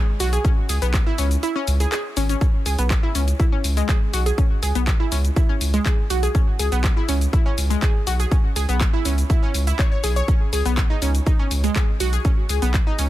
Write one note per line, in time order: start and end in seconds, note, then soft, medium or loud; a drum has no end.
0.20 0.38 B1 medium
0.20 0.23 F#4 loud
0.20 open hi-hat loud
0.20 shaker medium
0.33 0.38 G#4 medium
0.33 closed hi-hat medium
0.33 shaker soft
0.45 0.48 C#4 medium
0.45 kick loud
0.45 closed hi-hat medium
0.45 shaker soft
0.69 0.78 C#2 loud
0.69 0.74 G#4 medium
0.69 open hi-hat loud
0.69 shaker medium
0.82 1.00 B1 medium
0.82 0.85 B3 loud
0.82 closed hi-hat medium
0.82 shaker soft
0.94 kick loud
0.94 clap loud
0.94 closed hi-hat medium
0.94 shaker soft
1.07 1.11 E4 loud
1.18 1.37 C#2 medium
1.18 1.23 C#4 medium
1.18 open hi-hat loud
1.18 shaker medium
1.31 closed hi-hat medium
1.31 shaker soft
1.43 1.48 E4 medium
1.43 closed hi-hat medium
1.43 shaker soft
1.56 1.59 C#4 loud
1.68 1.86 C#2 medium
1.68 open hi-hat loud
1.68 shaker medium
1.80 1.85 G#4 medium
1.80 closed hi-hat medium
1.80 shaker soft
1.92 1.97 G#4 loud
1.92 clap loud
1.92 closed hi-hat medium
1.92 shaker soft
2.17 2.35 G#1 loud
2.17 2.20 C#4 medium
2.17 open hi-hat loud
2.17 shaker medium
2.29 2.32 C#4 medium
2.29 closed hi-hat medium
2.29 shaker soft
2.41 2.44 C#4 medium
2.41 kick loud
2.41 closed hi-hat medium
2.41 shaker soft
2.66 2.75 C#2 loud
2.66 2.71 G#4 medium
2.66 open hi-hat loud
2.66 shaker medium
2.79 2.96 B1 medium
2.79 2.81 B3 loud
2.79 closed hi-hat medium
2.79 shaker soft
2.90 kick loud
2.90 clap loud
2.90 closed hi-hat medium
2.90 shaker soft
3.03 3.08 E4 loud
3.15 3.33 C#2 medium
3.15 3.20 C#4 medium
3.15 open hi-hat loud
3.15 shaker medium
3.28 closed hi-hat medium
3.28 shaker soft
3.40 3.45 E4 medium
3.40 kick loud
3.40 closed hi-hat medium
3.40 shaker soft
3.52 3.55 C#4 loud
3.64 3.82 C#2 loud
3.64 open hi-hat loud
3.64 shaker medium
3.77 3.82 G#3 loud
3.77 closed hi-hat medium
3.77 shaker soft
3.89 3.97 G#4 medium
3.89 kick loud
3.89 clap loud
3.89 closed hi-hat medium
3.89 shaker soft
4.13 4.32 B1 medium
4.13 4.17 F#4 loud
4.13 open hi-hat loud
4.13 shaker medium
4.26 4.31 G#4 medium
4.26 closed hi-hat medium
4.26 shaker soft
4.38 4.41 C#4 medium
4.38 kick loud
4.38 closed hi-hat medium
4.38 shaker soft
4.63 4.72 C#2 loud
4.63 4.68 G#4 medium
4.63 open hi-hat loud
4.63 shaker medium
4.75 4.93 B1 medium
4.75 4.78 B3 loud
4.75 closed hi-hat medium
4.75 shaker soft
4.87 kick loud
4.87 clap loud
4.87 closed hi-hat medium
4.87 shaker soft
5.00 5.05 E4 loud
5.12 5.30 C#2 loud
5.12 5.17 C#4 medium
5.12 open hi-hat loud
5.12 shaker medium
5.25 closed hi-hat medium
5.25 shaker soft
5.36 5.42 E4 medium
5.36 kick loud
5.36 closed hi-hat medium
5.36 shaker soft
5.49 5.52 C#4 loud
5.61 5.79 C#2 loud
5.61 open hi-hat loud
5.61 shaker medium
5.74 5.79 G#3 loud
5.74 closed hi-hat medium
5.74 shaker soft
5.86 5.93 G#4 medium
5.86 kick loud
5.86 clap loud
5.86 closed hi-hat medium
5.86 shaker soft
6.10 6.28 B1 medium
6.10 6.13 F#4 loud
6.10 open hi-hat loud
6.10 shaker medium
6.23 6.28 G#4 medium
6.23 closed hi-hat medium
6.23 shaker soft
6.35 6.38 C#4 medium
6.35 kick loud
6.35 closed hi-hat medium
6.35 shaker soft
6.59 6.69 C#2 loud
6.59 6.64 G#4 medium
6.59 open hi-hat loud
6.59 shaker medium
6.72 6.90 B1 medium
6.72 6.75 B3 loud
6.72 closed hi-hat medium
6.72 shaker soft
6.84 kick loud
6.84 clap loud
6.84 closed hi-hat medium
6.84 shaker soft
6.97 7.01 E4 loud
7.09 7.27 C#2 medium
7.09 7.14 C#4 medium
7.09 open hi-hat loud
7.09 shaker medium
7.21 closed hi-hat medium
7.21 shaker soft
7.33 7.38 E4 medium
7.33 kick loud
7.33 closed hi-hat medium
7.33 shaker soft
7.46 7.49 C#4 loud
7.58 7.76 C#2 loud
7.58 open hi-hat loud
7.58 shaker medium
7.70 7.75 G#3 loud
7.70 closed hi-hat medium
7.70 shaker soft
7.82 7.90 G#4 medium
7.82 kick loud
7.82 clap loud
7.82 closed hi-hat medium
7.82 shaker soft
8.07 8.25 B1 medium
8.07 8.10 F#4 loud
8.07 open hi-hat loud
8.07 shaker medium
8.20 8.24 G#4 medium
8.20 closed hi-hat medium
8.20 shaker soft
8.31 8.35 C#4 medium
8.31 kick loud
8.31 closed hi-hat medium
8.31 shaker soft
8.56 8.65 C#2 loud
8.56 8.61 G#4 medium
8.56 open hi-hat loud
8.56 shaker medium
8.69 8.86 B1 medium
8.69 8.72 B3 loud
8.69 closed hi-hat medium
8.69 shaker soft
8.81 kick loud
8.81 clap loud
8.81 closed hi-hat medium
8.81 shaker soft
8.93 8.98 E4 loud
9.05 9.23 C#2 medium
9.05 9.10 C#4 medium
9.05 open hi-hat loud
9.05 shaker medium
9.18 closed hi-hat medium
9.18 shaker soft
9.30 9.35 E4 medium
9.30 kick loud
9.30 closed hi-hat medium
9.30 shaker soft
9.43 9.45 C#4 loud
9.54 9.73 C#2 loud
9.54 open hi-hat loud
9.54 shaker medium
9.67 9.74 E4 medium
9.67 closed hi-hat medium
9.67 shaker soft
9.79 9.87 C#5 medium
9.79 kick loud
9.79 clap loud
9.79 closed hi-hat soft
9.79 shaker soft
9.92 9.96 C#5 medium
10.03 10.22 B1 medium
10.03 10.09 G#4 medium
10.03 open hi-hat loud
10.03 shaker medium
10.16 10.21 C#5 loud
10.16 closed hi-hat medium
10.16 shaker soft
10.28 10.31 C#4 medium
10.28 kick loud
10.28 closed hi-hat medium
10.28 shaker soft
10.53 10.62 C#2 loud
10.53 10.58 G#4 medium
10.53 open hi-hat loud
10.53 shaker medium
10.65 10.83 B1 medium
10.65 10.68 B3 loud
10.65 closed hi-hat medium
10.65 shaker soft
10.77 kick loud
10.77 clap loud
10.77 closed hi-hat medium
10.77 shaker soft
10.90 10.95 D#4 loud
11.02 11.20 C#2 loud
11.02 11.07 C#4 medium
11.02 open hi-hat loud
11.02 shaker medium
11.15 closed hi-hat medium
11.15 shaker soft
11.26 11.32 D#4 medium
11.26 kick loud
11.26 closed hi-hat medium
11.26 shaker soft
11.39 11.42 C#4 loud
11.51 11.69 C#2 loud
11.51 open hi-hat loud
11.51 shaker medium
11.64 11.69 G#3 loud
11.64 closed hi-hat medium
11.64 shaker soft
11.76 11.83 G#4 medium
11.76 kick loud
11.76 clap loud
11.76 closed hi-hat medium
11.76 shaker soft
12.00 12.18 B1 medium
12.00 12.03 F#4 loud
12.00 open hi-hat loud
12.00 shaker medium
12.13 12.18 G#4 medium
12.13 closed hi-hat medium
12.13 shaker soft
12.25 12.28 C#4 medium
12.25 kick loud
12.25 closed hi-hat medium
12.25 shaker soft
12.49 12.59 C#2 loud
12.49 12.55 G#4 medium
12.49 open hi-hat loud
12.49 shaker medium
12.62 12.80 B1 medium
12.62 12.65 B3 loud
12.62 closed hi-hat medium
12.62 shaker soft
12.74 kick loud
12.74 clap loud
12.74 closed hi-hat medium
12.74 shaker soft
12.87 12.92 D#4 loud
12.99 13.09 C#2 medium
12.99 13.04 C#4 medium
12.99 open hi-hat loud
12.99 shaker medium